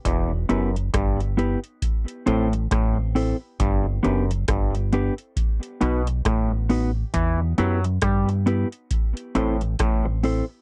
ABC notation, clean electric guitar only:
X:1
M:4/4
L:1/8
Q:"Swing 16ths" 1/4=68
K:Em
V:1 name="Clean electric guitar"
z [B,EGB] z [B,EGB] z [CEAc] z [CEAc] | z [B,DGB] z [B,DGB] z [B,^DFB] z [B,DFB] | z [B,EGB] z [B,EGB] z [CEAc] z [CEAc] |]